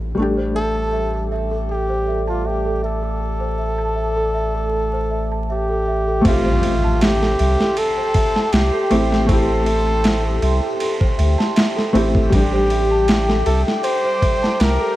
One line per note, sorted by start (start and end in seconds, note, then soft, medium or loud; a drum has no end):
0.00 0.14 A1 medium
0.00 0.12 A3 medium
0.00 0.13 C4 medium
0.00 0.15 G4 medium
0.00 6.21 A4 medium
0.00 0.14 E5 medium
0.00 6.21 G5 medium
0.00 0.13 C6 medium
0.00 downlifter medium
0.15 6.21 A1 medium
0.15 6.19 G3 medium
0.15 6.20 A3 medium
0.15 0.35 A4 medium
0.15 6.20 D6 medium
0.19 6.22 D4 medium
0.19 6.23 G4 medium
0.37 0.53 C5 medium
0.55 1.27 A4 loud
0.55 0.74 E5 medium
0.75 0.91 A5 medium
0.93 1.12 E5 medium
1.14 1.30 A4 medium
1.31 1.50 E5 medium
1.51 1.68 A4 medium
1.69 2.24 G4 medium
1.69 1.87 A4 medium
1.89 2.05 C5 medium
2.08 2.27 E5 medium
2.27 2.49 F4 medium
2.27 2.43 A5 medium
2.45 2.84 G4 medium
2.45 2.64 E5 medium
2.66 2.82 A4 medium
2.83 5.45 A4 medium
2.83 3.02 E5 medium
3.03 3.19 A4 medium
3.20 3.39 A4 medium
3.40 3.57 C5 medium
3.58 3.78 E5 medium
3.78 3.95 A5 medium
3.96 4.16 E5 medium
4.16 4.33 A4 medium
4.34 4.54 E5 medium
4.55 4.71 A4 medium
4.72 4.91 A4 medium
4.93 5.09 C5 medium
5.11 5.30 E5 medium
5.32 5.47 A5 medium
5.49 6.22 G4 medium
5.49 5.68 E5 medium
5.69 5.86 A4 medium
5.88 6.06 E5 medium
6.08 6.24 A4 medium
6.21 8.85 A3 medium
6.21 8.86 C4 medium
6.21 14.96 G4 medium
6.21 6.43 A4 medium
6.21 12.28 G5 medium
6.21 12.28 C6 medium
6.21 kick loud
6.21 ride medium
6.21 impact medium
6.25 7.36 A1 loud
6.25 7.04 F4 loud
6.25 8.88 G4 medium
6.25 8.87 E5 medium
6.46 6.61 C5 medium
6.63 6.82 E5 medium
6.63 ride medium
6.84 6.99 A5 loud
7.01 7.80 G4 loud
7.01 7.20 E5 medium
7.01 snare loud
7.01 ride medium
7.22 7.38 A4 loud
7.22 snare soft
7.39 7.57 C2 loud
7.39 7.58 E5 medium
7.39 ride medium
7.59 7.76 A4 medium
7.59 snare medium
7.77 7.95 A4 medium
7.77 8.55 A4 loud
7.77 ride medium
7.97 8.13 C5 medium
8.14 8.34 E5 medium
8.14 kick medium
8.14 ride medium
8.36 8.51 A5 loud
8.36 snare soft
8.53 8.71 C2 loud
8.53 9.28 G4 loud
8.53 8.72 E5 medium
8.53 snare loud
8.53 ride medium
8.73 8.90 A4 loud
8.90 10.39 A1 medium
8.90 9.24 A3 medium
8.90 9.25 C4 medium
8.90 9.25 E4 medium
8.90 9.26 G4 medium
8.90 9.10 E5 loud
8.90 ride medium
9.11 9.28 A4 loud
9.11 snare soft
9.26 11.32 A3 medium
9.26 11.34 C4 medium
9.26 9.47 A4 medium
9.26 10.77 A4 loud
9.26 kick loud
9.26 ride medium
9.31 11.35 E4 medium
9.31 11.36 G4 medium
9.49 9.65 C5 medium
9.66 9.86 E5 medium
9.66 ride medium
9.87 10.03 A5 loud
10.04 10.24 E5 medium
10.04 snare loud
10.04 ride medium
10.25 10.42 A4 loud
10.42 10.60 C2 loud
10.42 10.62 E5 loud
10.42 ride medium
10.63 10.79 A4 loud
10.80 10.99 A4 medium
10.80 ride medium
11.00 11.16 C5 medium
11.00 kick medium
11.18 11.36 D2 medium
11.18 11.37 E5 medium
11.18 ride medium
11.38 11.54 A5 medium
11.38 snare medium
11.56 11.75 E5 medium
11.56 snare loud
11.56 ride medium
11.76 11.93 A4 loud
11.76 snare soft
11.93 12.28 A1 medium
11.93 12.27 A3 medium
11.93 12.28 C4 medium
11.93 12.29 E4 medium
11.93 12.29 G4 loud
11.93 12.14 E5 loud
11.93 ride medium
12.15 12.31 A4 loud
12.15 kick medium
12.30 13.43 A1 loud
12.30 14.93 G3 medium
12.30 13.42 G4 loud
12.30 12.51 A4 medium
12.30 14.96 G5 medium
12.30 14.96 D6 medium
12.30 kick loud
12.30 ride medium
12.34 14.95 D4 medium
12.34 14.96 G4 medium
12.53 12.68 C5 loud
12.70 12.90 E5 medium
12.70 ride medium
12.91 13.07 A5 loud
13.08 13.28 E5 medium
13.08 snare loud
13.08 ride medium
13.29 13.45 A4 loud
13.29 snare medium
13.46 13.64 C2 loud
13.46 13.62 A4 loud
13.46 13.66 E5 loud
13.46 ride medium
13.67 13.83 A4 medium
13.67 snare medium
13.84 14.03 A4 medium
13.84 14.62 C5 loud
13.84 ride medium
14.05 14.20 C5 loud
14.22 14.42 E5 medium
14.22 kick medium
14.22 ride medium
14.42 14.58 A5 loud
14.42 snare soft
14.60 14.78 C2 loud
14.60 14.96 A#4 loud
14.60 14.79 E5 medium
14.60 snare loud
14.60 ride medium
14.80 14.96 A4 loud